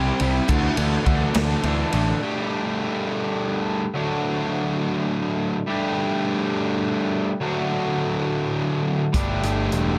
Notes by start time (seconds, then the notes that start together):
Already playing: C2 C3 G3 C4 E4 G4
0.20 C2 C3 G3 C4 E4 G4, ride
0.48 D2 D3 E3 A3 D4 A4, kick, clap, ride
0.77 D2 D3 E3 A3 D4 A4, ride
0.92 clap
1.05 D2 D3 E3 A3 D4 A4, kick, ride
1.34 D2 D3 E3 A3 D4 A4, snare, clap, ride
1.50 clap
1.63 D2 D3 E3 A3 D4 A4, ride
1.79 clap
1.92 A1 D3 E3 A3 D4 A4, ride
2.21 G3 A3 D4 G4
3.94 D3 F#3 A3 D4 F#4
5.67 G3 A3 D4 G4
7.40 D3 F#3 A3 D4 F#4
9.13 G1 G3 A3 D4 G4, kick, closed hi-hat
9.43 G1, closed hi-hat
9.71 E1, closed hi-hat